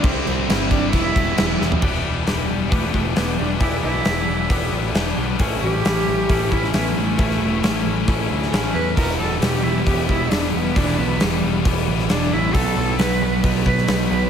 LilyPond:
<<
  \new Staff \with { instrumentName = "Cello" } { \time 4/4 \key e \minor \tempo 4 = 134 c'4 r8 d'8 e'4. r8 | \key e \dorian r4. g8 a4 b8 d'8 | e'8 e'2 r4. | r8 g'2 e'8 b8 a8~ |
a2~ a8 r4 b'8 | ais'8 a'8 g'8 e'8 g'8 e'8 d'8 b8 | d'8 b8 g4 r4 d'8 e'8 | a'4 b'4 r8 b'8 r8 b'8 | }
  \new Staff \with { instrumentName = "Clean electric guitar" } { \time 4/4 \key e \minor r1 | \key e \dorian <e b d' g'>8 <b d' g'>8 <e b d' g'>4 <e b d' g'>8 <b d' g'>8 <e b d' g'>8 <b d' g'>8 | <e b d' g'>8 <b d' g'>8 <e b d' g'>4 <e b d' g'>8 <b d' g'>8 <e b d' g'>8 <b d' g'>8 | <a, e a cis' e'>8 <a cis' e'>8 <e a cis' e'>4 <a, e a cis' e'>8 <a cis' e'>8 <e a cis' e'>8 <a cis' e'>8 |
<a, e a cis' e'>8 <a cis' e'>8 <e a cis' e'>4 <a, e a cis' e'>8 <a cis' e'>8 <e a cis' e'>8 <a cis' e'>8 | r1 | r1 | r1 | }
  \new Staff \with { instrumentName = "Distorted electric guitar" } { \time 4/4 \key e \minor <c g c' e'>8 <g c' e'>8 <c g c' e'>8 <g c' e'>8 <e g b e'>4 <e g b e'>8 <g b e'>8 | \key e \dorian <e g b e'>2 <e g b e'>2 | <e g b e'>2 <e g b e'>2 | <a, e a cis' e'>2 <a, e a cis' e'>2 |
<a, e a cis' e'>2 <a, e a cis' e'>2 | <e g b e'>2 <e g b e'>2 | <e g b e'>2 <e g b e'>2 | <b, fis b dis'>2 <b, fis b dis'>2 | }
  \new Staff \with { instrumentName = "Distorted electric guitar" } { \clef bass \time 4/4 \key e \minor <c g c' e'>8 <g c' e'>8 <c g c' e'>4 <e g b e'>8 <g b e'>8 <e g b e'>8 <g b e'>8 | \key e \dorian r1 | r1 | r1 |
r1 | <e, b, e>1 | <e, b, e>1 | <b, fis b>1 | }
  \new Staff \with { instrumentName = "Picked electric bass" } { \clef bass \time 4/4 \key e \minor c,8 c,8 g,,4 e,,8 e,,8 e,,8 e,,8 | \key e \dorian e,,8 e,,8 e,,8 e,,8 e,,8 e,,8 e,,8 e,,8 | e,,8 b,,8 e,,8 e,,8 e,,8 a,,8 e,,8 b,,8 | a,,8 a,,8 a,,8 a,,8 a,,8 a,,8 a,,8 a,,8 |
a,,8 e,,8 a,,8 a,,8 a,,8 d,8 a,,8 e,8 | e,,8 e,,8 e,,8 e,,8 e,,8 e,,8 e,,8 e,,8 | e,,8 b,,8 e,,8 e,,8 e,,8 a,,8 e,,8 a,,8 | b,,8 b,,8 b,,8 b,,8 b,,8 b,,8 b,,8 b,,8 | }
  \new DrumStaff \with { instrumentName = "Drums" } \drummode { \time 4/4 <cymc bd>8 cymc8 <cymc sn>8 <cymc bd>8 <cymc bd>8 <cymc bd>8 <cymc sn>8 sn16 tomfh16 | <cymc bd>16 sn8. <hho sn>4 <hho bd>8 bd8 <hho sn>4 | <hho bd>4 <hho sn>4 <hho bd>4 <hho sn>4 | <hho bd>4 <hho sn>4 <hho bd>8 bd16 sn16 <hho sn>4 |
<hho bd>16 sn8. <hho sn>4 <hho bd>8. sn16 <hho sn>4 | <hho bd>16 sn8. <hho sn>4 <hho bd>8 bd8 <hho sn>4 | <hho bd>16 sn8. <hho sn>4 <hho bd>8. sn16 <hho sn>4 | <hho bd>4 <hho sn>4 <hho bd>8 bd16 sn16 <hho sn>4 | }
>>